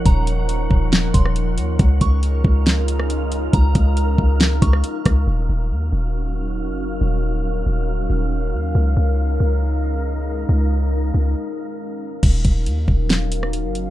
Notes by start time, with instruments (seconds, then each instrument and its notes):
Already playing: synth texture F3 C#5 F#5, ambient pad F3 C#4 D#4 A#4
0.06 808-style bass D#1, synth bell A#5, kick, closed hi-hat
0.27 closed hi-hat
0.49 closed hi-hat
0.71 808-style bass D#1, kick
0.93 snare, closed hi-hat
1.14 808-style bass D#1, synth bell C6, kick, closed hi-hat
1.25 cross-stick
1.36 closed hi-hat
1.58 808-style bass D#2, closed hi-hat
1.79 808-style bass C#2, ambient pad G#3 C#4 D#4 F4, synth texture D#4 A#4 F5, kick, closed hi-hat
2.01 808-style bass C#2, synth bell C#6, kick, closed hi-hat
2.23 closed hi-hat
2.44 808-style bass C#2, kick
2.66 snare, closed hi-hat
2.88 closed hi-hat
3.00 cross-stick
3.10 closed hi-hat
3.32 closed hi-hat
3.53 808-style bass C#2, synth bell A#5, kick, closed hi-hat
3.75 808-style bass C#2, kick, closed hi-hat
3.97 closed hi-hat
4.18 808-style bass C#2, kick
4.40 snare, closed hi-hat
4.62 808-style bass C#2, synth bell C#6, kick, closed hi-hat
4.73 cross-stick
4.84 closed hi-hat
5.05 808-style bass C#2, kick, cross-stick, closed hi-hat
5.27 808-style bass D#1, ambient pad F#3 C#4 D#4 A#4 F5, synth texture C#4 F#4 F5
5.49 808-style bass D#1
5.71 808-style bass D#2
5.93 808-style bass D#1
6.69 808-style bass F#1
7.01 808-style bass D#1
7.66 808-style bass D#1
8.10 808-style bass D#1
8.53 808-style bass D#2
8.75 808-style bass C#2, ambient pad G#3 D#4, synth texture D#4 A#4
8.97 808-style bass C#2
9.40 808-style bass C#2
10.49 808-style bass C#2
11.14 808-style bass C#2
12.23 808-style bass D#1, ambient pad F#3 C#4 D#4 A#4 F5, kick, closed hi-hat, crash
12.45 808-style bass D#1, kick, closed hi-hat
12.66 808-style bass D#2, closed hi-hat
12.88 808-style bass D#1, kick
13.10 snare, closed hi-hat
13.32 closed hi-hat
13.43 cross-stick
13.53 closed hi-hat
13.64 808-style bass F#1
13.75 closed hi-hat